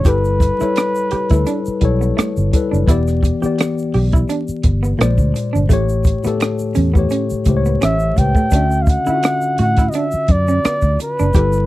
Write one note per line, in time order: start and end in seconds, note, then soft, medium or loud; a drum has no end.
0.00 0.49 G3 medium
0.00 0.10 C#5 medium
0.05 0.50 G1 medium
0.05 0.50 E4 medium
0.05 0.18 G4 medium
0.05 0.51 A4 medium
0.05 0.51 B4 medium
0.05 2.19 B4 medium
0.05 kick medium
0.05 closed hi-hat medium
0.05 shaker medium
0.24 shaker soft
0.40 muted clean electric guitar stroke soft
0.40 kick medium
0.40 closed hi-hat medium
0.40 shaker soft
0.58 1.17 G3 medium
0.58 1.18 E4 medium
0.58 0.71 E4 medium
0.58 1.19 A4 medium
0.58 muted fingered electric bass stroke soft
0.58 cross-stick soft
0.58 shaker soft
0.63 1.19 C#5 medium
0.76 finger snap medium
0.76 muted clean electric guitar stroke soft
0.76 cross-stick loud
0.76 closed hi-hat medium
0.76 shaker medium
0.95 shaker soft
1.11 1.24 G4 medium
1.11 muted fingered electric bass stroke soft
1.11 closed hi-hat medium
1.30 1.44 D2 medium
1.30 1.73 G3 medium
1.30 1.41 E4 medium
1.30 1.74 E4 medium
1.30 1.75 A4 medium
1.30 kick medium
1.30 cross-stick soft
1.30 closed hi-hat soft
1.30 shaker soft
1.34 1.75 B4 medium
1.47 1.59 D4 medium
1.47 closed hi-hat medium
1.47 shaker medium
1.66 muted fingered electric bass stroke soft
1.66 shaker soft
1.81 2.11 B1 medium
1.81 2.41 G3 medium
1.81 2.41 E4 medium
1.81 2.42 A4 medium
1.81 muted clean electric guitar stroke soft
1.81 kick medium
1.81 closed hi-hat medium
1.85 2.43 C#5 medium
2.01 2.12 B3 medium
2.01 shaker soft
2.17 2.30 A3 medium
2.17 finger snap medium
2.17 muted fingered electric bass stroke soft
2.17 cross-stick loud
2.17 closed hi-hat medium
2.17 shaker medium
2.37 2.50 G1 medium
2.37 shaker soft
2.52 2.82 G3 medium
2.52 2.83 E4 medium
2.52 2.83 A4 medium
2.52 muted clean electric guitar stroke soft
2.52 kick medium
2.52 cross-stick soft
2.52 closed hi-hat medium
2.52 shaker soft
2.56 2.84 B4 medium
2.71 2.86 F#1 medium
2.71 2.82 D4 medium
2.71 shaker soft
2.86 3.32 E1 medium
2.86 3.32 E3 loud
2.86 3.32 B3 medium
2.86 3.01 E4 medium
2.86 3.33 G4 medium
2.86 kick loud
2.86 closed hi-hat medium
2.86 shaker medium
2.91 3.34 D5 loud
3.08 cross-stick soft
3.08 shaker soft
3.23 muted clean electric guitar stroke soft
3.23 kick medium
3.23 closed hi-hat medium
3.23 shaker soft
3.42 4.58 E3 medium
3.42 4.59 B3 medium
3.42 3.53 G4 medium
3.42 4.60 G4 medium
3.42 muted fingered electric bass stroke soft
3.42 shaker soft
3.46 4.61 D5 medium
3.58 finger snap medium
3.58 muted clean electric guitar stroke soft
3.58 cross-stick loud
3.58 closed hi-hat medium
3.58 shaker medium
3.78 shaker soft
3.94 4.23 B1 medium
3.94 4.07 G4 medium
3.94 open hi-hat soft
4.12 4.24 E4 medium
4.12 kick medium
4.12 closed hi-hat soft
4.12 shaker soft
4.29 4.42 D4 medium
4.29 closed hi-hat medium
4.29 shaker medium
4.48 muted fingered electric bass stroke soft
4.48 shaker soft
4.63 4.93 G1 medium
4.63 muted clean electric guitar stroke soft
4.63 kick medium
4.63 closed hi-hat medium
4.83 4.94 B3 medium
4.83 shaker soft
4.98 5.16 A#1 medium
4.98 5.58 A#2 medium
4.98 5.59 G#3 medium
4.98 5.12 A#3 medium
4.98 5.60 C5 medium
4.98 finger snap medium
4.98 cross-stick loud
4.98 closed hi-hat medium
4.98 shaker medium
5.03 5.61 D5 loud
5.18 5.32 D2 medium
5.18 kick medium
5.18 shaker soft
5.34 muted clean electric guitar stroke soft
5.34 cross-stick soft
5.34 closed hi-hat medium
5.34 shaker soft
5.53 5.70 G1 medium
5.53 5.64 D4 medium
5.53 shaker soft
5.69 6.14 A1 medium
5.69 6.14 A2 loud
5.69 5.82 A3 medium
5.69 6.15 A3 medium
5.69 6.16 G4 medium
5.69 kick loud
5.69 closed hi-hat medium
5.69 shaker medium
5.73 6.16 C#5 loud
5.89 shaker soft
6.04 muted clean electric guitar stroke soft
6.04 kick medium
6.04 closed hi-hat medium
6.04 shaker soft
6.23 6.82 A2 medium
6.23 6.82 A3 medium
6.23 6.35 B3 medium
6.23 6.83 G4 medium
6.23 muted fingered electric bass stroke soft
6.23 cross-stick soft
6.23 closed hi-hat soft
6.23 shaker soft
6.27 6.84 A4 medium
6.40 finger snap medium
6.40 muted clean electric guitar stroke soft
6.40 cross-stick loud
6.40 closed hi-hat medium
6.40 shaker medium
6.59 shaker soft
6.75 7.05 E2 medium
6.75 6.88 C#4 medium
6.75 closed hi-hat medium
6.75 shaker soft
6.94 7.38 A2 medium
6.94 7.38 A3 medium
6.94 7.05 B3 medium
6.94 7.39 G4 medium
6.94 kick medium
6.94 shaker soft
6.99 7.40 C#5 medium
7.10 7.24 C#4 medium
7.10 closed hi-hat medium
7.10 shaker medium
7.30 muted fingered electric bass stroke soft
7.30 shaker soft
7.45 7.75 C#2 medium
7.45 8.06 A2 medium
7.45 8.06 A3 medium
7.45 8.07 G4 medium
7.45 muted clean electric guitar stroke soft
7.45 kick medium
7.45 closed hi-hat medium
7.45 shaker soft
7.50 7.55 C5 medium
7.57 8.11 C#5 medium
7.65 7.76 B3 medium
7.65 shaker soft
7.81 8.11 A1 medium
7.81 7.94 C#4 medium
7.81 8.20 E5 medium
7.81 finger snap medium
7.81 cross-stick loud
7.81 closed hi-hat medium
7.81 shaker medium
7.99 shaker soft
8.16 8.33 C#2 medium
8.16 8.46 A2 medium
8.16 8.47 A3 medium
8.16 8.48 G4 medium
8.16 8.84 G5 medium
8.16 muted clean electric guitar stroke soft
8.16 kick medium
8.16 cross-stick soft
8.16 closed hi-hat medium
8.16 shaker soft
8.21 8.49 B4 medium
8.35 8.46 A3 medium
8.35 kick medium
8.35 shaker soft
8.51 8.97 D2 medium
8.51 8.96 D3 medium
8.51 8.97 C#4 medium
8.51 8.65 D4 medium
8.51 8.98 F#4 medium
8.51 kick medium
8.51 closed hi-hat medium
8.51 shaker medium
8.56 8.99 E5 medium
8.71 shaker soft
8.82 8.91 F5 medium
8.86 9.59 F#5 loud
8.86 muted clean electric guitar stroke soft
8.86 kick medium
8.86 closed hi-hat soft
8.86 shaker soft
9.05 10.23 D3 medium
9.05 10.23 C#4 medium
9.05 9.17 E4 medium
9.05 9.14 F4 soft
9.05 muted fingered electric bass stroke soft
9.05 shaker soft
9.10 10.25 E5 medium
9.15 10.27 F#4 medium
9.23 finger snap medium
9.23 muted clean electric guitar stroke soft
9.23 cross-stick loud
9.23 closed hi-hat medium
9.23 shaker medium
9.41 shaker soft
9.58 9.88 A2 medium
9.58 9.71 F#4 medium
9.58 9.91 F#5 medium
9.58 closed hi-hat medium
9.76 9.89 E4 medium
9.76 kick medium
9.76 cross-stick soft
9.76 closed hi-hat soft
9.76 shaker soft
9.89 9.98 D#5 medium
9.89 shaker medium
9.94 10.07 D4 medium
9.94 10.33 E5 medium
9.94 closed hi-hat medium
10.12 muted fingered electric bass stroke soft
10.12 shaker soft
10.28 10.58 F#2 medium
10.28 11.01 D5 medium
10.28 muted clean electric guitar stroke soft
10.28 kick medium
10.28 closed hi-hat medium
10.48 10.59 C#4 medium
10.48 shaker soft
10.65 10.77 B3 medium
10.65 finger snap medium
10.65 muted fingered electric bass stroke soft
10.65 cross-stick loud
10.65 closed hi-hat medium
10.65 shaker medium
10.82 10.96 D2 medium
10.82 kick medium
10.82 shaker soft
11.00 11.66 B4 medium
11.00 muted clean electric guitar stroke soft
11.00 closed hi-hat medium
11.00 shaker soft
11.19 11.33 F#1 medium
11.19 11.30 D4 medium
11.19 shaker soft
11.34 11.66 G1 loud
11.34 11.66 G3 medium
11.34 11.66 E4 medium
11.34 11.47 G4 medium
11.34 11.66 A4 medium
11.34 kick loud
11.34 closed hi-hat medium
11.34 shaker medium
11.38 11.66 B4 medium
11.53 shaker soft